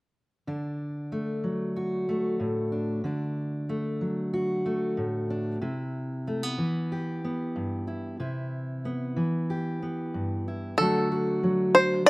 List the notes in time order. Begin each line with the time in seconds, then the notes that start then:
0.47 D3 D4
1.12 A3
1.44 F#3
1.76 F#4
2.09 A3
2.40 A2
2.72 D4
3.04 D3 D4
3.69 A3
4.01 F#3
4.33 F#4
4.66 A3
4.97 A2
5.30 D4
5.61 C3 E4
6.27 A3
6.43 B3
6.58 E3
6.92 G4
7.24 B3
7.56 G2
7.87 E4
8.20 C3 E4
8.85 B3
9.16 E3
9.50 G4
9.82 B3
10.14 G2
10.48 E4
10.78 D3 F#3 A3 A4
10.82 D4 F#4
11.12 F#4
11.43 F#3
11.75 D4 C5
12.06 D5